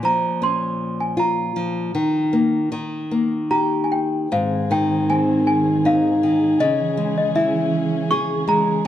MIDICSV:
0, 0, Header, 1, 4, 480
1, 0, Start_track
1, 0, Key_signature, -4, "major"
1, 0, Tempo, 766284
1, 1215, Time_signature, 3, 2, 24, 8
1, 1700, Tempo, 790514
1, 3140, Tempo, 752823
1, 5553, End_track
2, 0, Start_track
2, 0, Title_t, "Celesta"
2, 0, Program_c, 0, 8
2, 32, Note_on_c, 0, 82, 79
2, 245, Note_off_c, 0, 82, 0
2, 272, Note_on_c, 0, 84, 75
2, 630, Note_on_c, 0, 80, 60
2, 631, Note_off_c, 0, 84, 0
2, 732, Note_off_c, 0, 80, 0
2, 749, Note_on_c, 0, 82, 68
2, 2164, Note_off_c, 0, 82, 0
2, 2182, Note_on_c, 0, 82, 70
2, 2384, Note_on_c, 0, 80, 52
2, 2388, Note_off_c, 0, 82, 0
2, 2427, Note_off_c, 0, 80, 0
2, 2431, Note_on_c, 0, 79, 65
2, 2653, Note_off_c, 0, 79, 0
2, 2678, Note_on_c, 0, 77, 65
2, 2894, Note_off_c, 0, 77, 0
2, 2916, Note_on_c, 0, 79, 76
2, 3149, Note_on_c, 0, 80, 72
2, 3151, Note_off_c, 0, 79, 0
2, 3378, Note_off_c, 0, 80, 0
2, 3386, Note_on_c, 0, 80, 72
2, 3631, Note_off_c, 0, 80, 0
2, 3635, Note_on_c, 0, 77, 77
2, 4085, Note_off_c, 0, 77, 0
2, 4108, Note_on_c, 0, 75, 80
2, 4443, Note_off_c, 0, 75, 0
2, 4473, Note_on_c, 0, 75, 65
2, 4525, Note_off_c, 0, 75, 0
2, 4589, Note_on_c, 0, 76, 80
2, 5039, Note_off_c, 0, 76, 0
2, 5066, Note_on_c, 0, 85, 88
2, 5286, Note_off_c, 0, 85, 0
2, 5308, Note_on_c, 0, 82, 81
2, 5525, Note_off_c, 0, 82, 0
2, 5553, End_track
3, 0, Start_track
3, 0, Title_t, "String section"
3, 0, Program_c, 1, 48
3, 2668, Note_on_c, 1, 51, 66
3, 2668, Note_on_c, 1, 60, 63
3, 2668, Note_on_c, 1, 68, 73
3, 4089, Note_off_c, 1, 51, 0
3, 4089, Note_off_c, 1, 60, 0
3, 4103, Note_on_c, 1, 52, 73
3, 4105, Note_on_c, 1, 61, 64
3, 5523, Note_off_c, 1, 52, 0
3, 5525, Note_off_c, 1, 61, 0
3, 5553, Note_off_c, 1, 68, 0
3, 5553, End_track
4, 0, Start_track
4, 0, Title_t, "Nylon-string guitar"
4, 0, Program_c, 2, 24
4, 0, Note_on_c, 2, 46, 62
4, 18, Note_on_c, 2, 53, 41
4, 261, Note_on_c, 2, 61, 47
4, 733, Note_on_c, 2, 65, 47
4, 946, Note_off_c, 2, 53, 0
4, 977, Note_on_c, 2, 53, 44
4, 1189, Note_off_c, 2, 46, 0
4, 1192, Note_off_c, 2, 61, 0
4, 1201, Note_off_c, 2, 65, 0
4, 1210, Note_off_c, 2, 53, 0
4, 1219, Note_on_c, 2, 51, 52
4, 1458, Note_on_c, 2, 58, 43
4, 1687, Note_off_c, 2, 51, 0
4, 1692, Note_off_c, 2, 58, 0
4, 1702, Note_on_c, 2, 51, 57
4, 1943, Note_on_c, 2, 58, 45
4, 2182, Note_on_c, 2, 67, 42
4, 2644, Note_off_c, 2, 51, 0
4, 2649, Note_off_c, 2, 58, 0
4, 2654, Note_off_c, 2, 67, 0
4, 2674, Note_on_c, 2, 44, 57
4, 2910, Note_on_c, 2, 51, 47
4, 3146, Note_on_c, 2, 60, 42
4, 3629, Note_on_c, 2, 63, 48
4, 3839, Note_off_c, 2, 51, 0
4, 3872, Note_on_c, 2, 51, 45
4, 4081, Note_off_c, 2, 44, 0
4, 4082, Note_off_c, 2, 60, 0
4, 4093, Note_off_c, 2, 63, 0
4, 4101, Note_off_c, 2, 51, 0
4, 4107, Note_on_c, 2, 49, 58
4, 4344, Note_on_c, 2, 56, 48
4, 4587, Note_on_c, 2, 64, 48
4, 5070, Note_on_c, 2, 68, 54
4, 5275, Note_off_c, 2, 56, 0
4, 5301, Note_on_c, 2, 56, 49
4, 5513, Note_off_c, 2, 64, 0
4, 5514, Note_off_c, 2, 49, 0
4, 5527, Note_off_c, 2, 68, 0
4, 5531, Note_off_c, 2, 56, 0
4, 5553, End_track
0, 0, End_of_file